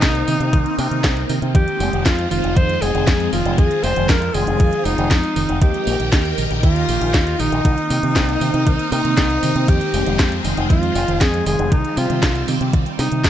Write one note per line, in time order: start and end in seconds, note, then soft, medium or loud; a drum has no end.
0.00 0.22 C2 loud
0.00 1.53 A#3 medium
0.00 1.53 C4 medium
0.00 0.11 C4 loud
0.00 0.78 D#4 loud
0.00 1.51 D#4 medium
0.00 kick loud
0.00 snare loud
0.00 clap loud
0.00 closed hi-hat loud
0.15 closed hi-hat soft
0.28 0.37 C3 medium
0.28 0.40 D#3 loud
0.28 open hi-hat loud
0.40 0.50 C3 medium
0.40 0.49 D#4 medium
0.40 closed hi-hat soft
0.53 0.63 C2 loud
0.53 0.62 D#3 loud
0.53 kick loud
0.53 closed hi-hat medium
0.66 closed hi-hat soft
0.78 0.88 C3 loud
0.78 0.84 A#3 medium
0.78 1.26 D#4 medium
0.78 open hi-hat loud
0.91 1.01 C3 medium
0.91 1.00 D#3 medium
0.91 closed hi-hat soft
1.04 1.23 C2 medium
1.04 1.13 C4 loud
1.04 kick loud
1.04 snare loud
1.04 clap loud
1.04 closed hi-hat medium
1.17 closed hi-hat soft
1.29 1.39 C3 medium
1.29 1.41 D#3 loud
1.29 open hi-hat loud
1.42 1.52 C3 medium
1.42 1.51 D#4 medium
1.42 closed hi-hat soft
1.55 1.65 F2 loud
1.55 1.64 D#3 loud
1.55 5.58 F3 medium
1.55 5.58 G#3 medium
1.55 5.58 C4 medium
1.55 3.56 D#4 medium
1.55 2.02 G4 loud
1.55 kick loud
1.55 closed hi-hat medium
1.68 closed hi-hat soft
1.80 1.90 F1 loud
1.80 1.86 G#3 medium
1.80 open hi-hat loud
1.93 2.03 F1 medium
1.93 2.02 D#3 medium
1.93 closed hi-hat soft
2.06 2.25 F2 loud
2.06 2.14 C4 loud
2.06 2.29 F4 loud
2.06 kick loud
2.06 snare loud
2.06 clap loud
2.06 closed hi-hat medium
2.18 closed hi-hat soft
2.31 2.41 F1 medium
2.31 2.43 D#3 loud
2.31 2.58 F4 loud
2.31 open hi-hat loud
2.44 2.54 F1 medium
2.44 2.53 D#4 medium
2.44 closed hi-hat soft
2.56 2.76 F2 medium
2.56 2.65 D#3 loud
2.56 2.83 C5 loud
2.56 kick loud
2.56 closed hi-hat medium
2.69 closed hi-hat soft
2.82 2.92 F1 loud
2.82 2.87 G#3 medium
2.82 3.32 G#4 loud
2.82 open hi-hat loud
2.95 3.04 F1 medium
2.95 3.03 D#3 medium
2.95 closed hi-hat soft
3.07 3.27 F2 loud
3.07 3.16 C4 loud
3.07 kick loud
3.07 snare loud
3.07 clap loud
3.07 closed hi-hat medium
3.20 closed hi-hat soft
3.33 3.43 F1 medium
3.33 3.45 D#3 loud
3.33 3.60 F4 medium
3.33 open hi-hat loud
3.45 3.55 F1 loud
3.45 3.54 D#4 medium
3.45 closed hi-hat soft
3.58 3.68 F2 loud
3.58 3.67 D#3 loud
3.58 5.60 F4 medium
3.58 3.85 G#4 loud
3.58 kick loud
3.58 closed hi-hat medium
3.71 closed hi-hat soft
3.84 3.93 F1 loud
3.84 3.89 G#3 medium
3.84 4.10 C5 loud
3.84 open hi-hat loud
3.96 4.06 F1 medium
3.96 4.05 D#3 medium
3.96 closed hi-hat soft
4.09 4.29 F2 loud
4.09 4.18 C4 loud
4.09 4.36 A#4 loud
4.09 kick loud
4.09 snare loud
4.09 clap loud
4.09 closed hi-hat medium
4.22 closed hi-hat soft
4.34 4.44 F1 medium
4.34 4.47 D#3 medium
4.34 4.87 G#4 loud
4.34 open hi-hat loud
4.47 4.57 F1 medium
4.47 4.56 D#4 medium
4.47 closed hi-hat soft
4.60 4.70 F2 loud
4.60 4.69 D#3 loud
4.60 kick loud
4.60 closed hi-hat medium
4.73 closed hi-hat soft
4.85 4.95 F1 medium
4.85 4.91 G#3 medium
4.85 5.61 D#4 loud
4.85 open hi-hat loud
4.98 5.08 F1 loud
4.98 5.07 D#3 medium
4.98 closed hi-hat soft
5.11 5.20 F2 loud
5.11 5.20 C4 loud
5.11 kick loud
5.11 snare loud
5.11 clap loud
5.11 closed hi-hat medium
5.24 closed hi-hat soft
5.36 5.46 F1 medium
5.36 5.48 D#3 loud
5.36 open hi-hat loud
5.49 5.59 F1 medium
5.49 5.58 D#4 medium
5.49 closed hi-hat soft
5.62 5.71 D#2 medium
5.62 5.70 D#3 loud
5.62 7.63 D#3 medium
5.62 13.30 D#4 medium
5.62 7.63 G4 medium
5.62 6.34 G4 medium
5.62 7.63 A#4 medium
5.62 kick loud
5.62 closed hi-hat medium
5.74 closed hi-hat soft
5.87 5.97 A#1 loud
5.87 5.92 A#3 medium
5.87 open hi-hat loud
6.00 6.10 A#1 medium
6.00 6.09 D#3 medium
6.00 closed hi-hat soft
6.12 6.32 D#2 loud
6.12 6.21 D#4 loud
6.12 kick loud
6.12 snare loud
6.12 clap loud
6.12 closed hi-hat medium
6.25 closed hi-hat soft
6.38 6.48 A#1 medium
6.38 6.50 D#3 loud
6.38 open hi-hat loud
6.51 6.60 A#1 loud
6.51 6.59 G4 medium
6.51 closed hi-hat soft
6.63 6.83 D#2 medium
6.63 6.72 D#3 loud
6.63 7.41 F4 medium
6.63 kick loud
6.63 closed hi-hat medium
6.76 closed hi-hat soft
6.89 6.98 A#1 loud
6.89 6.94 A#3 medium
6.89 open hi-hat loud
7.01 7.11 A#1 medium
7.01 7.10 D#3 medium
7.01 closed hi-hat soft
7.14 7.34 D#2 medium
7.14 7.23 D#4 loud
7.14 kick loud
7.14 snare loud
7.14 clap medium
7.14 closed hi-hat medium
7.27 closed hi-hat soft
7.39 7.49 A#1 medium
7.39 7.52 D#3 loud
7.39 8.92 D#4 loud
7.39 open hi-hat loud
7.52 7.62 A#1 loud
7.52 7.61 G4 medium
7.52 closed hi-hat soft
7.65 7.75 C2 loud
7.65 7.74 D#3 loud
7.65 9.66 A#3 medium
7.65 11.68 C4 medium
7.65 kick loud
7.65 closed hi-hat medium
7.78 closed hi-hat soft
7.90 8.00 C3 loud
7.90 7.96 A#3 medium
7.90 open hi-hat loud
8.03 8.13 C3 medium
8.03 8.12 D#3 medium
8.03 closed hi-hat soft
8.16 8.35 C2 loud
8.16 8.25 C4 loud
8.16 kick loud
8.16 snare loud
8.16 clap loud
8.16 closed hi-hat medium
8.29 closed hi-hat soft
8.41 8.51 C3 medium
8.41 8.53 D#3 loud
8.41 open hi-hat loud
8.54 8.64 C3 loud
8.54 8.63 D#4 medium
8.54 closed hi-hat soft
8.67 8.76 C2 medium
8.67 8.75 D#3 loud
8.67 kick loud
8.67 closed hi-hat medium
8.79 closed hi-hat soft
8.92 9.02 C3 loud
8.92 8.97 A#3 medium
8.92 9.70 D#4 loud
8.92 open hi-hat loud
9.05 9.14 C3 medium
9.05 9.14 D#3 medium
9.05 closed hi-hat soft
9.17 9.37 C2 medium
9.17 9.26 C4 loud
9.17 kick loud
9.17 snare loud
9.17 clap medium
9.17 closed hi-hat medium
9.30 closed hi-hat soft
9.43 9.53 C3 medium
9.43 9.55 D#3 loud
9.43 open hi-hat loud
9.56 9.65 C3 loud
9.56 9.64 D#4 medium
9.56 closed hi-hat soft
9.68 9.78 F2 loud
9.68 9.77 D#3 loud
9.68 11.70 F3 medium
9.68 11.70 G#3 loud
9.68 10.45 G4 loud
9.68 kick loud
9.68 closed hi-hat loud
9.81 closed hi-hat soft
9.94 10.03 F1 loud
9.94 9.99 G#3 medium
9.94 open hi-hat loud
10.06 10.16 F1 medium
10.06 10.15 D#3 medium
10.06 closed hi-hat soft
10.19 10.39 F2 loud
10.19 10.28 C4 loud
10.19 kick loud
10.19 snare loud
10.19 clap loud
10.19 closed hi-hat loud
10.32 closed hi-hat soft
10.45 10.54 F1 medium
10.45 10.57 D#3 loud
10.45 open hi-hat loud
10.57 10.67 F1 loud
10.57 10.66 D#4 medium
10.57 closed hi-hat soft
10.70 10.90 F2 medium
10.70 10.79 D#3 loud
10.70 11.23 F4 loud
10.70 kick loud
10.70 closed hi-hat loud
10.83 closed hi-hat soft
10.95 11.05 F1 loud
10.95 11.01 G#3 medium
10.95 open hi-hat loud
11.08 11.18 F1 medium
11.08 11.17 D#3 medium
11.08 closed hi-hat soft
11.21 11.40 F2 medium
11.21 11.30 C4 loud
11.21 11.46 G#4 loud
11.21 kick loud
11.21 snare loud
11.21 clap loud
11.21 closed hi-hat medium
11.34 closed hi-hat soft
11.46 11.56 F1 medium
11.46 11.58 D#3 loud
11.46 11.74 G#4 loud
11.46 open hi-hat loud
11.59 11.69 F1 loud
11.59 11.68 D#4 medium
11.59 closed hi-hat soft
11.72 11.81 C2 loud
11.72 11.81 D#3 loud
11.72 13.30 G3 medium
11.72 13.30 C4 medium
11.72 11.99 D#4 loud
11.72 kick loud
11.72 closed hi-hat loud
11.85 closed hi-hat soft
11.97 12.07 C3 loud
11.97 12.02 C4 medium
11.97 12.48 F4 medium
11.97 open hi-hat loud
12.10 12.20 C3 medium
12.10 12.19 D#3 medium
12.10 closed hi-hat soft
12.23 12.42 C2 loud
12.23 12.31 D#4 loud
12.23 kick loud
12.23 snare loud
12.23 clap loud
12.23 closed hi-hat loud
12.35 closed hi-hat soft
12.48 12.58 C3 medium
12.48 12.60 D#3 loud
12.48 open hi-hat loud
12.61 12.71 C3 medium
12.61 12.70 G4 medium
12.61 closed hi-hat soft
12.73 12.83 C2 medium
12.73 12.82 D#3 loud
12.73 kick loud
12.73 closed hi-hat loud
12.86 closed hi-hat soft
12.99 13.09 C3 medium
12.99 13.04 C4 medium
12.99 13.30 D#4 loud
12.99 snare medium
12.99 open hi-hat loud
13.12 13.21 C3 medium
13.12 13.20 D#3 medium
13.12 closed hi-hat soft
13.24 13.30 C2 medium
13.24 13.30 D#4 loud
13.24 kick loud
13.24 snare loud
13.24 clap loud
13.24 closed hi-hat medium